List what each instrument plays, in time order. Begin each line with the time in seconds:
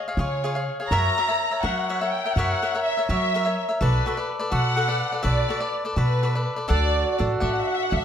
0.08 cavaquinho G#4 C#5 F5
0.15 upright bass C#3, cavaquinho F4 G#4, violin section C#5
0.20 cavaquinho C#5 F5
0.44 cavaquinho F4 G#4 C#5 F5
0.55 cavaquinho G#4 C#5 F5
0.80 cavaquinho G#4 C#5 F5
0.88 upright bass F#2, cavaquinho F#4 A#4, violin section A#5
0.93 cavaquinho C#5 E5
1.18 cavaquinho F#4 A#4 C#5 E5
1.28 cavaquinho A#4 C#5 E5
1.51 cavaquinho A#4 C#5 E5
1.62 upright bass F#3, cavaquinho F#4 A#4 C#5 E5, violin section F#5
1.89 cavaquinho F#4 A#4 C#5 E5
2.01 cavaquinho A#4 C#5 E5
2.10 violin section G5
2.25 cavaquinho A#4 C#5 E5
2.33 upright bass F#2, cavaquinho F#4, violin section F#5
2.38 cavaquinho A#4 C#5 E5
2.62 cavaquinho F#4 A#4 C#5 E5
2.75 cavaquinho A#4 C#5 E5
2.84 violin section E5
2.97 cavaquinho A#4 C#5 E5
3.08 upright bass F#3, cavaquinho F#4 A#4 C#5 E5, violin section E5
3.34 cavaquinho F#4 A#4 C#5 E5
3.45 cavaquinho A#4 C#5 E5
3.69 cavaquinho A#4 C#5 E5
3.80 upright bass B1, cavaquinho F#4 A4 B4 D5, violin section B4
4.06 cavaquinho F#4 A4 B4 D5
4.17 cavaquinho A4 B4 D5
4.39 cavaquinho A4 B4 D5
4.51 upright bass B2, cavaquinho F#4 A4 B4 D5, violin section F#5
4.76 cavaquinho F#4 A4 B4 D5
4.88 cavaquinho A4 B4 D5
5.12 cavaquinho A4 B4 D5
5.22 upright bass B1, cavaquinho F#4 A4 B4 D5, violin section D5
5.49 cavaquinho F#4 A4 B4 D5
5.60 cavaquinho A4 B4 D5
5.85 cavaquinho A4 B4 D5
5.95 upright bass B2, cavaquinho F#4 A4 B4 D5, violin section B4
6.23 cavaquinho F#4 A4 B4 D5
6.35 cavaquinho A4 B4 D5
6.56 cavaquinho A4 B4 D5
6.68 upright bass D2, cavaquinho D4 A4 D5 F#5, trumpet F#4, violin section D5
7.18 upright bass A1, cavaquinho D4 A4 D5 F#5
7.40 upright bass A1, cavaquinho D4 A4 D5 F#5, violin section E5
7.50 violin section F#5
7.59 violin section E5
7.68 violin section F#5
7.75 violin section E5
7.82 violin section F#5
7.90 upright bass D2, cavaquinho A4 D5 F#5, violin section E5